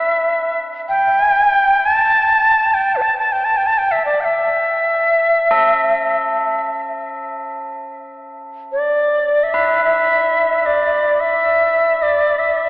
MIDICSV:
0, 0, Header, 1, 3, 480
1, 0, Start_track
1, 0, Tempo, 500000
1, 12185, End_track
2, 0, Start_track
2, 0, Title_t, "Native American-style wooden flute"
2, 0, Program_c, 0, 77
2, 0, Note_on_c, 0, 76, 74
2, 593, Note_off_c, 0, 76, 0
2, 852, Note_on_c, 0, 79, 87
2, 1779, Note_on_c, 0, 81, 85
2, 1794, Note_off_c, 0, 79, 0
2, 2629, Note_on_c, 0, 79, 73
2, 2643, Note_off_c, 0, 81, 0
2, 2844, Note_on_c, 0, 71, 51
2, 2858, Note_off_c, 0, 79, 0
2, 2897, Note_on_c, 0, 81, 68
2, 2911, Note_off_c, 0, 71, 0
2, 3038, Note_off_c, 0, 81, 0
2, 3057, Note_on_c, 0, 81, 71
2, 3188, Note_on_c, 0, 79, 69
2, 3203, Note_off_c, 0, 81, 0
2, 3308, Note_on_c, 0, 81, 71
2, 3322, Note_off_c, 0, 79, 0
2, 3428, Note_on_c, 0, 79, 76
2, 3442, Note_off_c, 0, 81, 0
2, 3520, Note_on_c, 0, 81, 75
2, 3534, Note_off_c, 0, 79, 0
2, 3629, Note_on_c, 0, 79, 71
2, 3643, Note_off_c, 0, 81, 0
2, 3758, Note_on_c, 0, 76, 67
2, 3772, Note_off_c, 0, 79, 0
2, 3866, Note_off_c, 0, 76, 0
2, 3892, Note_on_c, 0, 74, 67
2, 4037, Note_on_c, 0, 79, 64
2, 4051, Note_off_c, 0, 74, 0
2, 4072, Note_on_c, 0, 76, 70
2, 4082, Note_off_c, 0, 79, 0
2, 5925, Note_off_c, 0, 76, 0
2, 8373, Note_on_c, 0, 74, 60
2, 9057, Note_on_c, 0, 76, 70
2, 9071, Note_off_c, 0, 74, 0
2, 9444, Note_off_c, 0, 76, 0
2, 9450, Note_on_c, 0, 76, 71
2, 10184, Note_off_c, 0, 76, 0
2, 10184, Note_on_c, 0, 76, 61
2, 10230, Note_on_c, 0, 74, 67
2, 10240, Note_off_c, 0, 76, 0
2, 10754, Note_on_c, 0, 76, 76
2, 10768, Note_off_c, 0, 74, 0
2, 11542, Note_on_c, 0, 74, 75
2, 11556, Note_off_c, 0, 76, 0
2, 11889, Note_on_c, 0, 76, 67
2, 11904, Note_off_c, 0, 74, 0
2, 12185, Note_off_c, 0, 76, 0
2, 12185, End_track
3, 0, Start_track
3, 0, Title_t, "Tubular bells"
3, 0, Program_c, 1, 14
3, 0, Note_on_c, 1, 69, 54
3, 0, Note_on_c, 1, 71, 42
3, 4200, Note_off_c, 1, 69, 0
3, 5288, Note_on_c, 1, 69, 65
3, 7503, Note_off_c, 1, 71, 0
3, 9159, Note_on_c, 1, 71, 64
3, 12185, Note_off_c, 1, 69, 0
3, 12185, Note_off_c, 1, 71, 0
3, 12185, End_track
0, 0, End_of_file